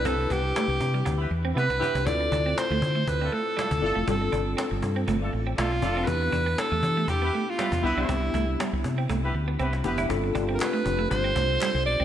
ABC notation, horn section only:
X:1
M:4/4
L:1/16
Q:"Swing 16ths" 1/4=120
K:Gmix
V:1 name="Horn section"
z8 z [B,EGB] z2 [B,EGB] z [B,EGB]2 | z8 z [A,DFA] z2 [A,DFA] z [A,DFA]2 | z8 z [A,DFA] z2 [A,DFA] z [A,DFA]2 | z8 z [B,EGB] z2 [B,EGB] z [B,EGB]2- |
[B,EGB] z8 [B,EGB] z2 [B,EGB] z [B,EGB]2 | z16 |]